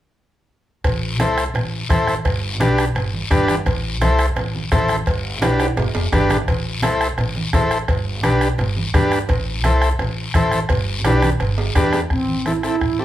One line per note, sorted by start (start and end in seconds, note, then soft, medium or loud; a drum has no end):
0.84 1.18 A1 medium
0.84 bombo low medium
0.84 bombo rim medium
0.84 cowbell loud
0.84 high conga soft
0.84 long guiro medium
1.18 1.47 C2 medium
1.18 1.44 E4 medium
1.18 1.44 A4 medium
1.18 1.45 C5 medium
1.18 bombo rim medium
1.18 cowbell medium
1.18 high conga medium
1.18 short guiro medium
1.38 bombo rim medium
1.38 short guiro medium
1.54 1.82 A1 medium
1.54 bombo rim medium
1.54 cowbell medium
1.54 high conga soft
1.54 low conga medium
1.54 long guiro medium
1.89 2.18 A1 medium
1.89 2.14 E4 medium
1.89 2.15 A4 medium
1.89 2.15 C5 medium
1.89 bombo low medium
1.89 bombo rim medium
1.89 cowbell medium
1.89 high conga medium
1.89 low conga medium
1.89 short guiro medium
2.07 bombo rim medium
2.07 high conga medium
2.07 short guiro medium
2.25 2.60 G1 medium
2.25 bombo low medium
2.25 bombo rim medium
2.25 cowbell medium
2.25 high conga soft
2.25 long guiro medium
2.60 2.88 B1 loud
2.60 2.85 D4 medium
2.60 2.85 G4 medium
2.60 2.85 B4 medium
2.60 bombo rim medium
2.60 cowbell medium
2.60 high conga loud
2.60 short guiro medium
2.78 bombo rim medium
2.78 short guiro medium
2.95 3.23 G1 medium
2.95 bombo rim medium
2.95 cowbell medium
2.95 high conga soft
2.95 low conga medium
2.95 long guiro medium
3.14 high conga medium
3.31 3.59 G1 medium
3.31 3.55 D4 loud
3.31 3.55 G4 medium
3.31 3.56 B4 loud
3.31 bombo low medium
3.31 bombo rim medium
3.31 cowbell medium
3.31 high conga medium
3.31 low conga medium
3.31 short guiro medium
3.48 bombo rim medium
3.48 high conga medium
3.48 short guiro medium
3.66 4.01 A1 medium
3.66 bombo low medium
3.66 bombo rim medium
3.66 cowbell medium
3.66 high conga soft
3.66 low conga medium
3.66 long guiro medium
4.01 4.29 C2 loud
4.01 4.26 E4 medium
4.01 4.26 A4 medium
4.01 4.26 C5 loud
4.01 bombo rim medium
4.01 cowbell medium
4.01 high conga medium
4.01 short guiro medium
4.19 bombo rim medium
4.19 short guiro medium
4.36 4.64 A1 medium
4.36 bombo rim medium
4.36 cowbell medium
4.36 high conga soft
4.36 low conga medium
4.36 long guiro medium
4.55 high conga medium
4.71 5.00 A1 loud
4.71 4.96 E4 medium
4.71 4.96 A4 medium
4.71 4.97 C5 loud
4.71 bombo low medium
4.71 bombo rim medium
4.71 cowbell medium
4.71 high conga medium
4.71 low timbale medium
4.71 short guiro medium
4.88 bombo rim medium
4.88 high conga medium
4.88 short guiro medium
5.06 5.42 G1 medium
5.06 bombo low medium
5.06 bombo rim medium
5.06 cowbell loud
5.06 high conga soft
5.06 long guiro medium
5.42 5.70 B1 medium
5.42 5.67 D4 medium
5.42 5.67 G4 medium
5.42 5.67 B4 medium
5.42 bombo rim medium
5.42 cowbell medium
5.42 high conga loud
5.42 high timbale loud
5.42 short guiro medium
5.60 bombo rim medium
5.60 high timbale loud
5.60 short guiro medium
5.76 5.91 G1 medium
5.76 bombo rim medium
5.76 cowbell medium
5.76 high conga soft
5.76 low conga medium
5.76 low timbale loud
5.76 long guiro medium
5.94 6.10 F1 medium
5.94 low timbale medium
6.12 6.28 G1 medium
6.12 6.37 D4 medium
6.12 6.37 G4 medium
6.12 6.37 B4 loud
6.12 bombo low medium
6.12 bombo rim medium
6.12 cowbell medium
6.12 high conga medium
6.12 low timbale medium
6.12 short guiro medium
6.29 6.45 A1 medium
6.29 bombo rim medium
6.29 high conga medium
6.29 low timbale medium
6.29 short guiro medium
6.48 6.83 A1 medium
6.48 bombo low medium
6.48 bombo rim medium
6.48 cowbell medium
6.48 high conga soft
6.48 long guiro medium
6.82 7.11 C2 loud
6.82 7.08 E4 medium
6.82 7.08 A4 medium
6.82 7.08 C5 medium
6.82 bombo rim medium
6.82 cowbell medium
6.82 high conga loud
6.82 short guiro medium
7.01 bombo rim medium
7.01 short guiro medium
7.18 7.46 A1 medium
7.18 bombo rim medium
7.18 cowbell medium
7.18 high conga soft
7.18 low conga medium
7.18 long guiro medium
7.36 high conga medium
7.53 7.81 A1 medium
7.53 7.78 E4 medium
7.53 7.78 A4 medium
7.53 7.79 C5 loud
7.53 bombo low medium
7.53 bombo rim medium
7.53 cowbell medium
7.53 high conga medium
7.53 low timbale medium
7.53 short guiro medium
7.71 bombo rim medium
7.71 short guiro medium
7.88 8.23 G1 medium
7.88 bombo low medium
7.88 bombo rim medium
7.88 cowbell medium
7.88 high conga soft
7.88 long guiro medium
8.23 8.52 B1 loud
8.23 8.48 D4 medium
8.23 8.48 G4 medium
8.23 8.49 B4 medium
8.23 bombo rim medium
8.23 cowbell medium
8.23 high conga medium
8.23 short guiro medium
8.41 bombo rim medium
8.41 short guiro medium
8.58 8.87 G1 medium
8.58 bombo rim medium
8.58 cowbell medium
8.58 high conga soft
8.58 low conga medium
8.58 long guiro medium
8.76 high conga medium
8.94 9.22 G1 medium
8.94 9.19 D4 medium
8.94 9.19 G4 medium
8.94 9.19 B4 loud
8.94 bombo low medium
8.94 bombo rim medium
8.94 cowbell medium
8.94 high conga medium
8.94 low conga medium
8.94 low timbale medium
8.94 short guiro medium
9.12 bombo rim medium
9.12 short guiro medium
9.29 9.63 A1 medium
9.29 bombo low medium
9.29 bombo rim medium
9.29 cowbell loud
9.29 high conga soft
9.29 low conga medium
9.29 long guiro medium
9.63 9.92 C2 loud
9.63 9.89 E4 medium
9.63 9.90 A4 medium
9.63 9.90 C5 medium
9.63 bombo rim medium
9.63 cowbell medium
9.63 high conga loud
9.63 short guiro medium
9.82 bombo rim medium
9.82 short guiro medium
9.99 10.27 A1 medium
9.99 bombo rim medium
9.99 cowbell medium
9.99 high conga soft
9.99 low conga medium
9.99 long guiro medium
10.34 10.63 A1 medium
10.34 10.60 E4 medium
10.34 10.60 A4 medium
10.34 10.60 C5 medium
10.34 bombo low medium
10.34 bombo rim medium
10.34 cowbell medium
10.34 high conga medium
10.34 short guiro medium
10.52 bombo rim medium
10.52 high conga medium
10.52 short guiro medium
10.69 11.05 G1 medium
10.69 bombo low medium
10.69 bombo rim medium
10.69 cowbell loud
10.69 high conga soft
10.69 low conga medium
10.69 long guiro medium
11.04 11.33 B1 medium
11.04 11.30 D4 medium
11.04 11.30 G4 medium
11.04 11.30 B4 loud
11.04 bombo rim medium
11.04 cowbell medium
11.04 high conga loud
11.04 high timbale loud
11.04 short guiro medium
11.22 bombo rim medium
11.22 high conga medium
11.22 short guiro medium
11.40 11.68 G1 loud
11.40 bombo rim medium
11.40 cowbell medium
11.40 long guiro medium
11.58 low timbale medium
11.75 12.04 E2 medium
11.75 12.00 D4 medium
11.75 12.00 G4 medium
11.75 12.01 B4 medium
11.75 bombo low medium
11.75 bombo rim medium
11.75 cowbell medium
11.75 low conga loud
11.75 low timbale medium
11.75 short guiro medium
11.93 bombo rim medium
11.93 low conga medium
11.93 low timbale medium
11.93 short guiro medium
12.10 12.67 A1 medium
12.10 12.49 C4 medium
12.10 bombo low medium
12.10 bombo rim medium
12.10 long guiro medium
12.28 high conga medium
12.46 12.52 C4 medium
12.46 12.53 E4 medium
12.46 12.64 E4 medium
12.46 12.53 A4 medium
12.46 bombo rim medium
12.46 high conga medium
12.46 short guiro medium
12.63 12.76 C4 medium
12.63 12.76 E4 medium
12.63 13.02 E4 medium
12.63 12.77 A4 medium
12.63 bombo rim medium
12.63 short guiro medium
12.81 13.05 A1 medium
12.81 bombo low medium
12.81 bombo rim medium
12.81 long guiro medium
12.99 13.05 C4 medium
12.99 13.05 E4 medium
12.99 13.05 G4 medium
12.99 13.05 A4 medium